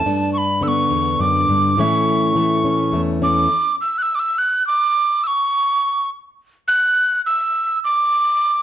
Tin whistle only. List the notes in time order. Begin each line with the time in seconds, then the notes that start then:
Already playing: A5
0.33 C#6
0.38 B5
0.63 E6
0.68 C#6
1.21 D6
1.79 C#6
3.23 D6
3.81 E6
3.98 F#6
4.02 E6
4.15 D6
4.19 E6
4.38 F#6
4.67 D6
5.24 C#6 E6
6.68 F#6
7.26 E6
7.84 D6